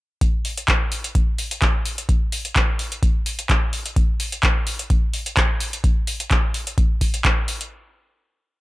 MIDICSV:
0, 0, Header, 1, 2, 480
1, 0, Start_track
1, 0, Tempo, 468750
1, 219, Time_signature, 4, 2, 24, 8
1, 8813, End_track
2, 0, Start_track
2, 0, Title_t, "Drums"
2, 219, Note_on_c, 9, 36, 101
2, 219, Note_on_c, 9, 42, 48
2, 321, Note_off_c, 9, 36, 0
2, 321, Note_off_c, 9, 42, 0
2, 459, Note_on_c, 9, 46, 96
2, 562, Note_off_c, 9, 46, 0
2, 589, Note_on_c, 9, 42, 61
2, 691, Note_off_c, 9, 42, 0
2, 698, Note_on_c, 9, 36, 103
2, 699, Note_on_c, 9, 42, 49
2, 700, Note_on_c, 9, 39, 110
2, 801, Note_off_c, 9, 36, 0
2, 801, Note_off_c, 9, 42, 0
2, 802, Note_off_c, 9, 39, 0
2, 939, Note_on_c, 9, 46, 97
2, 1041, Note_off_c, 9, 46, 0
2, 1068, Note_on_c, 9, 42, 58
2, 1170, Note_off_c, 9, 42, 0
2, 1178, Note_on_c, 9, 36, 108
2, 1178, Note_on_c, 9, 42, 47
2, 1281, Note_off_c, 9, 36, 0
2, 1281, Note_off_c, 9, 42, 0
2, 1418, Note_on_c, 9, 46, 97
2, 1520, Note_off_c, 9, 46, 0
2, 1548, Note_on_c, 9, 42, 64
2, 1651, Note_off_c, 9, 42, 0
2, 1658, Note_on_c, 9, 36, 109
2, 1658, Note_on_c, 9, 42, 51
2, 1659, Note_on_c, 9, 39, 114
2, 1761, Note_off_c, 9, 36, 0
2, 1761, Note_off_c, 9, 42, 0
2, 1762, Note_off_c, 9, 39, 0
2, 1900, Note_on_c, 9, 46, 96
2, 2002, Note_off_c, 9, 46, 0
2, 2028, Note_on_c, 9, 42, 63
2, 2131, Note_off_c, 9, 42, 0
2, 2138, Note_on_c, 9, 36, 105
2, 2139, Note_on_c, 9, 42, 46
2, 2241, Note_off_c, 9, 36, 0
2, 2242, Note_off_c, 9, 42, 0
2, 2379, Note_on_c, 9, 46, 106
2, 2482, Note_off_c, 9, 46, 0
2, 2508, Note_on_c, 9, 42, 64
2, 2610, Note_off_c, 9, 42, 0
2, 2619, Note_on_c, 9, 36, 116
2, 2619, Note_on_c, 9, 42, 47
2, 2620, Note_on_c, 9, 39, 115
2, 2721, Note_off_c, 9, 36, 0
2, 2722, Note_off_c, 9, 39, 0
2, 2722, Note_off_c, 9, 42, 0
2, 2859, Note_on_c, 9, 46, 109
2, 2961, Note_off_c, 9, 46, 0
2, 2989, Note_on_c, 9, 42, 57
2, 3091, Note_off_c, 9, 42, 0
2, 3099, Note_on_c, 9, 36, 115
2, 3099, Note_on_c, 9, 42, 48
2, 3201, Note_off_c, 9, 36, 0
2, 3202, Note_off_c, 9, 42, 0
2, 3339, Note_on_c, 9, 46, 100
2, 3441, Note_off_c, 9, 46, 0
2, 3469, Note_on_c, 9, 42, 64
2, 3571, Note_off_c, 9, 42, 0
2, 3579, Note_on_c, 9, 36, 110
2, 3580, Note_on_c, 9, 39, 121
2, 3580, Note_on_c, 9, 42, 51
2, 3681, Note_off_c, 9, 36, 0
2, 3682, Note_off_c, 9, 42, 0
2, 3683, Note_off_c, 9, 39, 0
2, 3819, Note_on_c, 9, 46, 101
2, 3921, Note_off_c, 9, 46, 0
2, 3949, Note_on_c, 9, 42, 65
2, 4051, Note_off_c, 9, 42, 0
2, 4059, Note_on_c, 9, 36, 122
2, 4059, Note_on_c, 9, 42, 48
2, 4161, Note_off_c, 9, 36, 0
2, 4162, Note_off_c, 9, 42, 0
2, 4299, Note_on_c, 9, 46, 102
2, 4401, Note_off_c, 9, 46, 0
2, 4427, Note_on_c, 9, 42, 60
2, 4530, Note_off_c, 9, 42, 0
2, 4538, Note_on_c, 9, 42, 47
2, 4539, Note_on_c, 9, 36, 119
2, 4539, Note_on_c, 9, 39, 114
2, 4641, Note_off_c, 9, 36, 0
2, 4641, Note_off_c, 9, 39, 0
2, 4641, Note_off_c, 9, 42, 0
2, 4779, Note_on_c, 9, 46, 103
2, 4881, Note_off_c, 9, 46, 0
2, 4908, Note_on_c, 9, 42, 61
2, 5010, Note_off_c, 9, 42, 0
2, 5018, Note_on_c, 9, 42, 44
2, 5019, Note_on_c, 9, 36, 116
2, 5121, Note_off_c, 9, 36, 0
2, 5121, Note_off_c, 9, 42, 0
2, 5258, Note_on_c, 9, 46, 105
2, 5361, Note_off_c, 9, 46, 0
2, 5388, Note_on_c, 9, 42, 63
2, 5490, Note_off_c, 9, 42, 0
2, 5499, Note_on_c, 9, 36, 121
2, 5499, Note_on_c, 9, 42, 53
2, 5500, Note_on_c, 9, 39, 119
2, 5601, Note_off_c, 9, 36, 0
2, 5601, Note_off_c, 9, 42, 0
2, 5602, Note_off_c, 9, 39, 0
2, 5739, Note_on_c, 9, 46, 107
2, 5841, Note_off_c, 9, 46, 0
2, 5869, Note_on_c, 9, 42, 62
2, 5972, Note_off_c, 9, 42, 0
2, 5979, Note_on_c, 9, 36, 122
2, 5980, Note_on_c, 9, 42, 48
2, 6081, Note_off_c, 9, 36, 0
2, 6082, Note_off_c, 9, 42, 0
2, 6219, Note_on_c, 9, 46, 110
2, 6321, Note_off_c, 9, 46, 0
2, 6349, Note_on_c, 9, 42, 64
2, 6452, Note_off_c, 9, 42, 0
2, 6459, Note_on_c, 9, 36, 113
2, 6460, Note_on_c, 9, 42, 49
2, 6461, Note_on_c, 9, 39, 111
2, 6561, Note_off_c, 9, 36, 0
2, 6563, Note_off_c, 9, 42, 0
2, 6564, Note_off_c, 9, 39, 0
2, 6700, Note_on_c, 9, 46, 109
2, 6803, Note_off_c, 9, 46, 0
2, 6829, Note_on_c, 9, 42, 60
2, 6932, Note_off_c, 9, 42, 0
2, 6939, Note_on_c, 9, 36, 120
2, 6940, Note_on_c, 9, 42, 46
2, 7042, Note_off_c, 9, 36, 0
2, 7042, Note_off_c, 9, 42, 0
2, 7179, Note_on_c, 9, 36, 63
2, 7180, Note_on_c, 9, 46, 108
2, 7282, Note_off_c, 9, 36, 0
2, 7283, Note_off_c, 9, 46, 0
2, 7309, Note_on_c, 9, 42, 62
2, 7412, Note_off_c, 9, 42, 0
2, 7420, Note_on_c, 9, 36, 114
2, 7420, Note_on_c, 9, 42, 49
2, 7421, Note_on_c, 9, 39, 117
2, 7522, Note_off_c, 9, 36, 0
2, 7522, Note_off_c, 9, 42, 0
2, 7523, Note_off_c, 9, 39, 0
2, 7660, Note_on_c, 9, 46, 112
2, 7762, Note_off_c, 9, 46, 0
2, 7790, Note_on_c, 9, 42, 64
2, 7893, Note_off_c, 9, 42, 0
2, 8813, End_track
0, 0, End_of_file